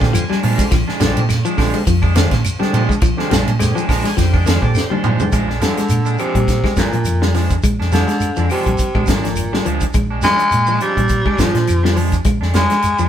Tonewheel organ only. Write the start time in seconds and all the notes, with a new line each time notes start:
0.00 D3 G3 C4 F4
0.14 G#5
0.42 F5
0.58 D3 G3 C4 F4
1.00 D3 G3 C4 D4
1.57 D3 G3 C4 F4
2.15 D3 G3 C4 F4
2.59 D3 G3 C4 D4
3.17 D3 G3 C4 F4
3.59 D3 G3 C4 G#4
3.89 A#5
4.06 G#5
4.17 D3 G3 C4 F4 G5
4.46 F5
4.61 D3 G3 C4 G4 D5
4.75 C5
5.19 D3 G3 C4 D4